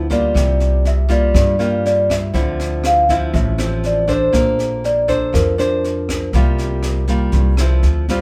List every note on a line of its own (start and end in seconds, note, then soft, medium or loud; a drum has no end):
0.00 0.31 D2 medium
0.00 0.33 D3 soft
0.10 1.06 G3 medium
0.10 1.06 A#3 medium
0.10 1.06 F4 medium
0.10 0.88 D5 medium
0.10 kick soft
0.10 snare soft
0.34 1.31 C2 medium
0.34 1.32 C3 medium
0.34 kick medium
0.34 cross-stick medium
0.34 snare soft
0.60 snare soft
0.85 1.12 E5 loud
0.85 snare soft
1.09 1.55 G3 medium
1.09 1.55 A#3 medium
1.09 1.56 F4 medium
1.09 1.35 D5 medium
1.09 kick soft
1.09 snare soft
1.34 2.32 G2 soft
1.34 2.30 G2 medium
1.34 1.82 D5 medium
1.34 kick medium
1.34 cross-stick medium
1.34 snare soft
1.59 2.30 G3 medium
1.59 2.30 A#3 medium
1.59 2.31 F4 medium
1.59 snare soft
1.86 2.11 D5 loud
1.86 snare soft
2.10 2.87 E5 medium
2.10 kick soft
2.10 cross-stick medium
2.10 snare soft
2.34 3.30 D2 medium
2.34 3.32 D3 medium
2.34 3.05 F3 medium
2.34 3.05 C4 medium
2.34 3.05 E4 medium
2.34 kick soft
2.34 snare soft
2.60 snare soft
2.84 3.11 F5 loud
2.84 cross-stick medium
2.84 snare soft
3.09 3.55 F3 medium
3.09 3.56 C4 medium
3.09 3.56 E4 medium
3.09 3.34 E5 medium
3.09 kick soft
3.09 snare soft
3.34 4.30 A1 loud
3.34 4.31 A2 medium
3.34 3.86 E5 loud
3.34 kick medium
3.34 snare soft
3.58 4.05 F3 medium
3.58 4.05 C4 medium
3.58 4.05 E4 medium
3.58 cross-stick medium
3.58 snare soft
3.83 4.11 D5 medium
3.83 snare soft
4.08 5.04 D4 medium
4.08 5.05 A4 medium
4.08 5.05 C5 medium
4.08 kick soft
4.08 snare soft
4.12 4.88 C5 medium
4.33 5.30 A#1 medium
4.33 5.31 A#3 medium
4.33 kick medium
4.33 cross-stick soft
4.33 snare soft
4.59 snare soft
4.84 5.10 D5 medium
4.84 snare soft
5.08 5.54 D4 medium
5.08 5.54 A4 medium
5.08 5.55 C5 medium
5.08 5.33 C5 medium
5.08 kick soft
5.08 snare soft
5.33 6.30 F2 medium
5.33 6.30 F3 soft
5.33 7.79 A#4 medium
5.33 kick medium
5.33 cross-stick medium
5.33 snare soft
5.58 6.29 D4 medium
5.58 6.30 C5 medium
5.58 snare soft
5.84 snare soft
6.09 kick soft
6.09 cross-stick medium
6.09 snare soft
6.33 7.29 C2 medium
6.33 7.31 C3 medium
6.33 7.05 G3 medium
6.33 7.05 A#3 medium
6.33 7.05 F4 medium
6.33 kick soft
6.33 snare soft
6.58 snare soft
6.83 cross-stick medium
6.83 snare soft
7.08 7.54 G3 medium
7.08 7.54 A#3 medium
7.08 7.55 F4 medium
7.08 kick soft
7.08 snare soft
7.32 7.79 C2 medium
7.32 7.81 G2 soft
7.32 kick medium
7.32 snare soft
7.57 8.05 F3 medium
7.57 8.05 C4 medium
7.57 8.05 E4 medium
7.57 cross-stick medium
7.57 snare soft
7.83 8.21 D2 medium
7.83 snare soft
8.08 8.21 G3 medium
8.08 8.21 C4 medium
8.08 8.21 F4 medium
8.08 kick soft
8.08 snare soft